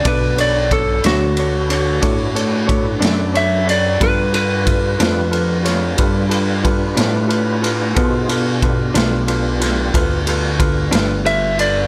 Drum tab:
RD |xxxxxxxxxxxx|xxxxxxxxxxxx|xxxxxxxxxxxx|
SD |---o-----o--|---o-o---o--|---o-o---o--|
BD |o-o---o-o---|o-o---o-o---|o-o---o-o---|